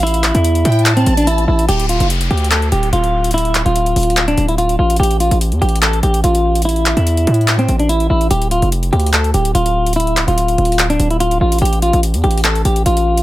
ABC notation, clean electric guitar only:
X:1
M:4/4
L:1/16
Q:1/4=145
K:Dm
V:1 name="Clean electric guitar"
E3 E6 C2 D E2 E2 | G2 F2 z2 G2 A2 G2 F4 | E3 F6 D2 E F2 F2 | G2 F2 z2 G2 A2 G2 F4 |
E3 E6 C2 D E2 E2 | G2 F2 z2 G2 A2 G2 F4 | E3 F6 D2 E F2 F2 | G2 F2 z2 G2 A2 G2 F4 |]